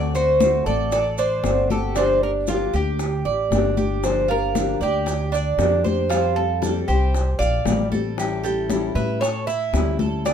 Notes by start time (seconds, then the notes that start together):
Already playing: D2 D3 A3 C4 F#4 A4 D5
0.15 A3 C4 F#4 C5, high bongo, high conga, maracas
0.40 D3 A3 C4 F#4, high bongo, high conga, maracas
0.66 A1 A3 C4 F#4 A4 D5, high bongo, maracas
0.92 A4 D5, muted steel-string acoustic guitar stroke, high bongo, high conga, maracas
1.18 D4 C5, high conga, maracas
1.43 G1 D3 A3 C4 F#4, high bongo, low bongo, high conga, maracas
1.70 A3 C4 F#4 G4 A4, high bongo, high conga, maracas
1.95 D3 F3 A#3 D4 G4 C5, high bongo, high conga, maracas
2.22 A#3 D4 G4 A#4, high conga
2.47 D3 F3 A#3 D4 F4 G4, high bongo, high conga, maracas
2.74 D2 A#3 D4 G4, high bongo, high conga, maracas
2.99 muted steel-string acoustic guitar stroke, high bongo, high conga, maracas
3.25 A1 D5, high bongo, high conga
3.50 G1 D3 F3 A#3 D4 G4, high bongo, low bongo, high conga, maracas
3.77 A#3 D4 G4, high bongo, high conga, maracas
4.03 D3 F3 A#3 D4 G4 C5, high bongo, high conga, maracas
4.28 A#3 D4 F4 G4 A#4, high bongo, high conga
4.55 D3 F3 A#3 D4 G4, high bongo, high conga, maracas
4.80 D2 A#3 D4 G4 D5, high bongo, maracas
5.06 G4, muted steel-string acoustic guitar stroke, high bongo, high conga, maracas
5.32 D4 D5, high conga, maracas
5.58 F2 D3 F3 A#3 D4 G4, high bongo, low bongo, high conga, maracas
5.84 A#3 D4 G4 C5, high bongo, high conga, maracas
6.10 F3 G3 C4 F4 G4 C5, high bongo, high conga, maracas
6.36 G3 C4 G4 A4, high conga
6.62 F3 G3 C4 G4 A4, high bongo, high conga, maracas
6.88 C2 G3 C4 G4 C5, high bongo, high conga, maracas
7.14 muted steel-string acoustic guitar stroke, high bongo, high conga, maracas
7.39 A#1 D5 F5, high bongo, high conga, maracas
7.65 A1 F3 G3 C4 G4, high bongo, low bongo, high conga, maracas
7.92 G3 C4 G4 A4, high bongo, high conga, maracas
8.17 E3 G3 C#4 E4 G4, high bongo, high conga, maracas
8.44 G3 C#4 E4 G4 A4, high bongo, high conga, maracas
8.69 E3 G3 C#4 E4, high bongo, high conga, maracas
8.95 A2 G3 C#4 E4 B4 E5, high bongo, maracas
9.21 A4 C#5, muted steel-string acoustic guitar stroke, high bongo, high conga, maracas
9.47 E4 E5, high conga, maracas
9.73 D2 E3 G3 C#4 E4, high bongo, low bongo, high conga, maracas
9.99 G3 C#4 E4 A4, high bongo, high conga, maracas
10.25 D3 A3 C4 D4 F#4 D5, high bongo, high conga, maracas